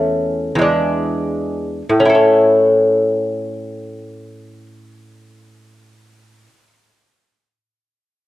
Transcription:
0.00 0.54 E2 medium
0.00 0.58 A3 soft
0.00 0.60 C#4 medium
0.55 1.82 E2 medium
0.55 1.83 G#3 soft
0.61 1.85 D4 soft
1.89 6.47 A2 soft
2.00 6.57 C#4 soft
2.05 6.63 E4 soft
2.10 6.67 A4 soft
2.15 6.73 C#5 soft

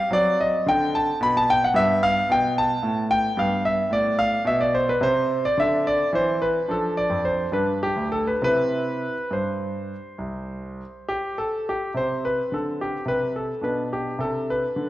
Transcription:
0.11 0.55 F#3 medium
0.11 1.71 C4 soft
0.11 0.40 D5 loud
0.41 0.67 D#5 medium
0.67 1.10 D3 medium
0.67 0.95 G5 loud
0.95 1.18 A5 medium
1.21 1.64 B2 medium
1.21 1.35 B5 loud
1.37 1.49 A5 loud
1.50 1.63 G5 loud
1.64 1.77 F#5 medium
1.74 2.18 G2 medium
1.74 3.33 B3 soft
1.74 1.99 E5 loud
2.03 2.30 F5 loud
2.29 2.73 B2 medium
2.29 2.54 G5 loud
2.58 3.03 A5 medium
2.83 3.27 A2 medium
3.11 3.38 G5 loud
3.37 3.81 G2 medium
3.37 4.97 B3 soft
3.37 3.62 F5 medium
3.65 3.92 E5 medium
3.91 4.34 A2 medium
3.91 4.15 D5 medium
4.19 4.42 F5 medium
4.45 4.90 B2 medium
4.45 4.60 E5 medium
4.61 4.74 D5 medium
4.74 4.88 C5 medium
4.89 5.02 B4 medium
5.01 5.45 C3 medium
5.01 6.63 C4 soft
5.01 5.43 C5 loud
5.45 5.58 D5 medium
5.57 6.02 D3 medium
5.57 5.86 E5 medium
5.87 6.10 D5 medium
6.13 6.57 E3 medium
6.13 6.42 C5 medium
6.42 6.69 B4 medium
6.68 7.02 F3 soft
6.68 7.49 D4 soft
6.68 6.93 A4 medium
6.97 7.25 D5 medium
7.10 7.44 F2 medium
7.25 7.49 C5 medium
7.52 7.87 G2 medium
7.52 8.37 D4 soft
7.52 7.78 B4 medium
7.83 8.07 G4 medium
7.96 8.32 D2 soft
8.12 8.26 A4 medium
8.27 8.42 B4 medium
8.42 9.04 C3 medium
8.42 9.13 C4 soft
8.42 9.13 E4 soft
8.42 9.32 B4 loud
9.31 9.92 G2 soft
9.31 11.67 C5 medium
10.18 10.80 C2 soft
11.09 11.37 G4 medium
11.38 11.67 A4 medium
11.69 11.92 G4 medium
11.94 12.40 C3 soft
11.94 13.58 C4 soft
11.94 12.24 C5 medium
12.25 12.52 B4 medium
12.52 12.96 D3 soft
12.52 12.80 A4 medium
12.81 13.04 G4 medium
13.05 13.50 C3 soft
13.05 13.31 B4 medium
13.36 13.59 A4 medium
13.61 14.08 B2 soft
13.61 14.89 D4 soft
13.61 13.87 B4 medium
13.92 14.20 G4 medium
14.18 14.64 C3 soft
14.18 14.48 A4 medium
14.50 14.89 B4 medium
14.76 14.89 D3 soft

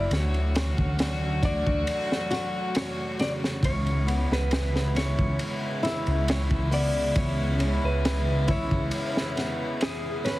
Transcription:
0.00 0.10 E4 loud
0.00 0.13 D5 medium
0.09 0.73 D2 medium
0.09 3.59 F#3 medium
0.09 3.59 A3 medium
0.09 3.59 F#4 loud
0.09 snare soft
0.09 ride medium
0.13 1.45 C#5 medium
0.34 ride soft
0.54 1.38 C#4 medium
0.54 snare loud
0.54 ride medium
0.78 1.62 D2 medium
0.78 kick medium
0.99 snare loud
0.99 ride medium
1.42 1.84 D4 medium
1.42 2.76 D5 loud
1.42 kick medium
1.42 ride medium
1.67 1.85 D2 medium
1.67 kick medium
1.87 ride medium
2.12 snare medium
2.31 3.15 F#4 loud
2.31 snare soft
2.31 ride medium
2.75 3.20 C#5 medium
2.75 snare loud
2.75 ride medium
3.19 3.63 C#3 medium
3.19 3.32 D5 loud
3.19 snare medium
3.19 ride medium
3.44 snare medium
3.62 4.26 C#2 loud
3.62 10.39 C#3 medium
3.62 10.39 G#3 medium
3.62 10.39 B3 medium
3.62 10.39 E4 medium
3.62 4.33 C#5 medium
3.62 kick loud
3.62 ride medium
3.87 ride soft
4.07 4.91 B3 medium
4.07 ride medium
4.31 5.14 C#2 loud
4.31 4.99 B4 loud
4.31 snare medium
4.51 snare loud
4.51 ride medium
4.76 snare soft
4.95 5.37 C#4 medium
4.95 6.29 C#5 loud
4.95 snare soft
4.95 ride medium
5.19 5.37 C#2 medium
5.19 kick medium
5.39 ride medium
5.83 6.67 E4 loud
5.83 snare soft
5.83 ride medium
6.07 7.12 C#2 medium
6.07 ride soft
6.28 6.42 C#5 loud
6.28 snare loud
6.28 ride medium
6.51 kick loud
6.71 7.56 B3 medium
6.71 7.17 D5 loud
6.71 open hi-hat medium
7.16 7.79 C#2 medium
7.16 7.86 C#5 loud
7.16 kick loud
7.16 ride medium
7.59 8.02 C#4 medium
7.59 ride medium
7.84 8.67 C#2 medium
7.84 8.51 B4 loud
8.05 snare loud
8.05 ride loud
8.48 9.32 E4 loud
8.48 9.78 C#5 loud
8.48 kick loud
8.48 ride medium
8.71 8.90 C#2 medium
8.71 kick medium
8.91 ride loud
9.17 snare medium
9.36 10.20 B3 medium
9.36 snare soft
9.36 ride medium
9.81 10.27 G#4 medium
9.81 snare loud
9.81 ride medium
10.24 10.39 C#4 medium
10.24 10.39 B4 loud
10.24 snare medium
10.24 ride medium

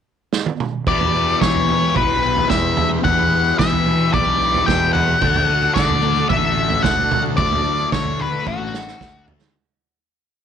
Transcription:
0.33 snare medium
0.46 high tom medium
0.60 mid tom medium
0.86 1.33 E2 medium
0.86 3.04 E2 medium
0.86 3.05 B2 medium
0.86 5.19 E3 medium
0.86 3.05 E3 medium
0.86 5.19 G3 medium
0.86 5.19 B3 soft
0.86 5.19 G4 soft
0.86 5.18 B4 medium
0.86 1.41 D5 medium
0.86 kick loud
0.86 floor tom medium
1.01 floor tom medium
1.41 1.88 E3 medium
1.41 1.96 C#5 medium
1.41 kick medium
1.41 snare medium
1.41 mid tom medium
1.55 floor tom medium
1.69 floor tom medium
1.96 2.42 B1 medium
1.96 2.47 B4 medium
1.96 kick loud
1.96 floor tom medium
2.36 floor tom medium
2.50 2.96 E2 medium
2.50 2.88 E5 medium
2.50 kick medium
2.50 snare medium
2.50 mid tom medium
2.77 floor tom medium
2.77 mid tom medium
3.04 3.51 E2 medium
3.04 5.21 E2 medium
3.04 5.22 B2 medium
3.04 5.22 E3 medium
3.04 3.55 F#5 medium
3.04 kick loud
3.04 floor tom medium
3.19 floor tom medium
3.59 4.05 E3 medium
3.59 4.10 E5 medium
3.59 kick loud
3.59 snare medium
3.59 mid tom medium
3.73 floor tom medium
3.86 floor tom medium
4.14 4.59 B1 medium
4.14 4.64 D5 medium
4.14 kick medium
4.14 floor tom medium
4.54 floor tom medium
4.66 5.14 E2 medium
4.66 4.93 G5 medium
4.66 kick medium
4.66 snare medium
4.66 mid tom medium
4.93 5.72 F#5 medium
4.93 floor tom medium
4.93 mid tom medium
5.21 5.68 D2 loud
5.21 9.51 D3 medium
5.21 7.37 D3 medium
5.21 9.52 F#3 medium
5.21 9.52 A3 soft
5.21 7.39 A3 loud
5.21 7.40 D4 medium
5.21 7.37 F#4 medium
5.21 9.52 A4 medium
5.21 kick loud
5.21 floor tom medium
5.21 low conga medium
5.36 floor tom medium
5.62 high conga medium
5.74 6.22 D3 medium
5.74 6.29 D5 medium
5.74 kick medium
5.74 snare medium
5.74 mid tom medium
5.89 floor tom medium
6.02 floor tom medium
6.02 low conga medium
6.16 high conga medium
6.29 6.76 A1 medium
6.29 6.86 E5 medium
6.29 kick medium
6.29 floor tom medium
6.70 floor tom medium
6.83 7.30 D2 medium
6.83 7.21 F#5 medium
6.83 kick loud
6.83 snare medium
6.83 mid tom medium
7.11 floor tom medium
7.11 mid tom medium
7.11 low conga medium
7.26 high conga medium
7.37 7.84 D2 medium
7.37 9.53 D3 medium
7.37 9.54 A3 medium
7.37 9.55 D4 medium
7.37 9.53 E4 soft
7.37 7.88 D5 medium
7.37 kick loud
7.37 floor tom medium
7.37 low conga medium
7.52 floor tom medium
7.80 high conga medium
7.92 8.38 D3 medium
7.92 8.21 C#5 medium
7.92 kick medium
7.92 snare medium
7.92 mid tom medium
8.05 floor tom medium
8.19 8.45 B4 medium
8.19 floor tom medium
8.19 high conga medium
8.19 low conga medium
8.34 high conga medium
8.47 8.93 A1 medium
8.47 9.25 F#4 medium
8.47 kick medium
8.74 snare medium
8.88 snare soft
9.01 9.47 D2 medium
9.01 kick loud
9.01 snare medium
9.28 floor tom medium
9.28 low conga medium
9.42 snare medium
9.42 high conga medium

